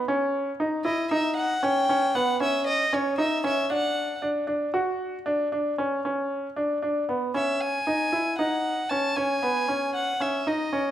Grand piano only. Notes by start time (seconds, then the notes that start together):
0.08 C#4
0.60 D#4
0.85 E4
1.11 D#4
1.63 C#4
1.89 C#4
2.15 B3
2.40 C#4
2.93 C#4
3.18 D#4
3.44 C#4
3.70 D4
4.22 D4
4.47 D4
4.74 F#4
5.26 D4
5.52 D4
5.78 C#4
6.05 C#4
6.56 D4
6.82 D4
7.09 B3
7.34 C#4
7.87 D#4
8.12 E4
8.39 D#4
8.91 C#4
9.17 C#4
9.43 B3
9.68 C#4
10.20 C#4
10.47 D#4
10.73 C#4